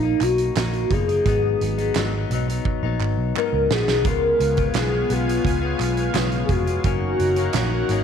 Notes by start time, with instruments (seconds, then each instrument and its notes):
Already playing: picked electric bass A#1, soft synth lead D#4
0.03 clean electric guitar A#3 D#4
0.21 picked electric bass B1, soft synth lead F#4, clap, closed hi-hat
0.38 closed hi-hat
0.56 picked electric bass A#1, clean electric guitar A#3 D#4, snare, clap, closed hi-hat
0.73 closed hi-hat
0.90 picked electric bass F#1, clean electric guitar B2 F3 A#3 D#4, soft synth lead G#4, kick, closed hi-hat
1.08 clean electric guitar F3 A#3 D#4, closed hi-hat
1.26 picked electric bass G#1, clean electric guitar G#2 F#3 B3 D#4, kick, closed hi-hat
1.61 picked electric bass G#1, closed hi-hat
1.78 clean electric guitar F#3 B3 D#4, closed hi-hat
1.94 picked electric bass G#1, clean electric guitar G#2 F#3 B3, snare, clap, closed hi-hat
1.99 clean electric guitar D#4
2.14 clean electric guitar F#3 B3 D#4
2.30 picked electric bass B1, clean electric guitar G#2 F#3 B3, closed hi-hat
2.35 clean electric guitar D#4
2.48 clean electric guitar F#3 B3 D#4, closed hi-hat
2.65 kick
2.83 picked electric bass A#1, clean electric guitar F#3 B3 D#4
3.00 picked electric bass G#1, clap
3.17 picked electric bass B1
3.36 clean electric guitar G#2 F#3 B3 D#4, soft synth lead A#4, clap
3.53 picked electric bass C#2
3.70 picked electric bass A#1, clean electric guitar G#2 F#3 B3 D#4, soft synth lead G#4, snare
3.88 picked electric bass B1, clean electric guitar F#3 B3 D#4, snare
4.05 picked electric bass C#2, clean electric guitar C#3 G#3 B3 F4, analog synth pad B3 C#5 F5 G#5, soft synth lead A#4, kick, closed hi-hat
4.40 picked electric bass C#2, closed hi-hat
4.57 clean electric guitar B3 F4, kick, closed hi-hat
4.61 clean electric guitar G#3
4.73 picked electric bass B1, clean electric guitar C#3 G#3 B3, snare, clap, closed hi-hat
4.77 clean electric guitar F4, soft synth lead G#4
4.92 clean electric guitar G#3 B3 F4
5.09 picked electric bass B1, clean electric guitar C#3 G#3 B3 F4, soft synth lead F4, closed hi-hat
5.27 clean electric guitar G#3 B3 F4, closed hi-hat
5.45 picked electric bass C#2, soft synth lead F4, kick, closed hi-hat
5.61 clean electric guitar G#3 B3 F4
5.80 picked electric bass B1, clap, closed hi-hat
5.97 closed hi-hat
6.14 picked electric bass B1, clean electric guitar C#3 G#3 B3 F4, snare, clap, closed hi-hat
6.32 closed hi-hat
6.44 clean electric guitar C#3, soft synth lead G#4
6.49 picked electric bass F1, clean electric guitar G#3 B3 F4, soft synth lead F#4, kick, closed hi-hat
6.66 clean electric guitar G#3 B3 F4, closed hi-hat
6.84 picked electric bass F#1, clean electric guitar F#2 D#3 A#3 C#4, analog synth pad D#4 A#4 F#5, kick, closed hi-hat
7.19 picked electric bass F#1, closed hi-hat
7.36 clean electric guitar D#3 A#3 C#4, closed hi-hat
7.53 picked electric bass A#1, clean electric guitar F#2 D#3 A#3 C#4, snare, clap, closed hi-hat
7.71 clean electric guitar D#3 A#3 C#4
7.88 picked electric bass G#1, clean electric guitar F#2 D#3 A#3 C#4, closed hi-hat